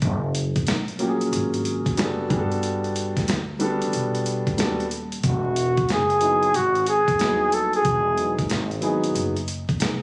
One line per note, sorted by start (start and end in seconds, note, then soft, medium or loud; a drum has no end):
0.02 0.64 F#1 loud
0.02 kick loud
0.02 closed hi-hat medium
0.35 closed hi-hat medium
0.56 kick loud
0.56 closed hi-hat medium
0.67 1.29 A#1 medium
0.67 snare loud
0.67 closed hi-hat loud
0.88 closed hi-hat soft
0.99 1.93 F#3 medium
0.99 1.93 A#3 medium
0.99 1.93 C#4 medium
0.99 1.93 F4 medium
0.99 1.09 G4 medium
0.99 closed hi-hat medium
1.08 1.97 G#4 medium
1.21 closed hi-hat soft
1.32 1.84 G#1 medium
1.32 closed hi-hat medium
1.54 closed hi-hat soft
1.65 closed hi-hat medium
1.86 muted upright bass stroke soft
1.86 kick medium
1.86 closed hi-hat soft
1.97 2.29 F#1 medium
1.97 2.27 G3 medium
1.97 2.28 B3 medium
1.97 2.29 D4 medium
1.97 2.29 F#4 medium
1.97 2.07 G#4 medium
1.97 snare medium
1.97 closed hi-hat medium
2.05 2.36 A4 medium
2.29 3.24 G1 loud
2.29 3.37 G3 medium
2.29 3.38 B3 medium
2.29 3.38 D4 medium
2.29 3.38 F#4 medium
2.29 2.39 G#4 medium
2.29 kick loud
2.29 closed hi-hat medium
2.38 3.42 A4 loud
2.52 closed hi-hat soft
2.63 closed hi-hat medium
2.84 closed hi-hat soft
2.96 closed hi-hat medium
3.17 kick medium
3.17 snare soft
3.17 closed hi-hat medium
3.28 3.79 D2 loud
3.28 snare loud
3.28 closed hi-hat loud
3.59 4.53 G3 medium
3.59 4.53 B3 medium
3.59 4.54 D4 medium
3.59 4.54 F#4 medium
3.59 4.54 A4 medium
3.59 closed hi-hat medium
3.82 muted upright bass stroke soft
3.82 closed hi-hat soft
3.93 4.45 B1 medium
3.93 closed hi-hat medium
4.15 closed hi-hat soft
4.26 closed hi-hat medium
4.47 muted upright bass stroke soft
4.47 kick medium
4.47 closed hi-hat soft
4.57 5.21 D#1 medium
4.57 4.84 G3 medium
4.57 4.84 B3 medium
4.57 4.84 D4 medium
4.57 4.84 F#4 medium
4.57 4.85 A4 medium
4.57 snare medium
4.57 closed hi-hat loud
4.80 closed hi-hat soft
4.91 closed hi-hat medium
5.12 closed hi-hat soft
5.23 5.86 E1 loud
5.23 5.93 F#4 medium
5.23 kick loud
5.23 closed hi-hat medium
5.56 closed hi-hat medium
5.77 kick medium
5.77 closed hi-hat medium
5.89 6.51 F#1 medium
5.89 6.57 G#4 medium
5.89 snare loud
5.89 closed hi-hat medium
6.10 closed hi-hat soft
6.21 6.47 F#3 medium
6.21 6.47 B3 medium
6.21 6.47 D#4 medium
6.21 6.48 E4 medium
6.21 6.48 G#4 medium
6.21 closed hi-hat medium
6.43 closed hi-hat soft
6.54 7.05 G#1 medium
6.54 6.88 F#4 loud
6.54 closed hi-hat medium
6.75 closed hi-hat soft
6.86 7.56 G#4 loud
6.86 closed hi-hat medium
7.08 muted upright bass stroke soft
7.08 kick medium
7.08 closed hi-hat medium
7.18 7.81 D#1 medium
7.18 8.12 F#3 medium
7.18 8.12 B3 medium
7.18 8.13 D#4 medium
7.18 8.13 E4 medium
7.18 8.13 F#4 medium
7.18 snare loud
7.18 closed hi-hat loud
7.52 7.75 A4 medium
7.52 closed hi-hat medium
7.73 8.35 G#4 loud
7.73 closed hi-hat soft
7.85 8.47 E1 loud
7.85 kick loud
7.85 closed hi-hat medium
8.16 8.43 F#3 medium
8.16 8.43 B3 medium
8.16 8.43 D#4 soft
8.16 8.43 E4 medium
8.16 8.44 G#4 medium
8.16 closed hi-hat medium
8.39 kick loud
8.39 closed hi-hat medium
8.49 9.12 G#1 medium
8.49 snare loud
8.49 closed hi-hat loud
8.71 closed hi-hat soft
8.81 9.31 F#3 medium
8.81 9.32 B3 medium
8.81 9.32 D#4 medium
8.81 9.32 E4 medium
8.81 9.33 G#4 medium
8.81 closed hi-hat medium
9.04 closed hi-hat soft
9.15 9.66 F#1 medium
9.15 closed hi-hat medium
9.37 closed hi-hat soft
9.48 closed hi-hat medium
9.69 muted upright bass stroke soft
9.69 kick medium
9.69 closed hi-hat soft
9.80 10.02 F1 medium
9.80 10.01 B3 soft
9.80 10.01 G#4 medium
9.80 snare loud
9.80 closed hi-hat loud